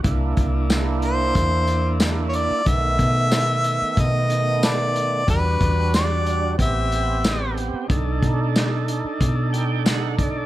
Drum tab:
HH |xxxxxxxx|xxxxxxxx|xxxxxxxx|xxxxxxxx|
TB |--x---x-|--x---x-|--x---x-|--x---x-|
SD |--o---o-|--o---o-|--o---o-|--o---o-|
BD |oo--o---|oo--o---|oo--o---|oo--o--o|